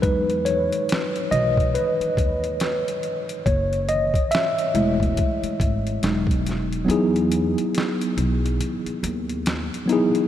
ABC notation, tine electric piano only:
X:1
M:4/4
L:1/8
Q:"Swing 16ths" 1/4=70
K:E
V:1 name="Tine electric piano"
B c2 d B3 z | c d e4 z2 | [F,B,DEG]4 z3 [F,B,DEG] |]
V:2 name="Tine electric piano" clef=bass
[F,G,D]3 z4 z | z3 [G,A,E] z2 [F,G,D]2 | z8 |]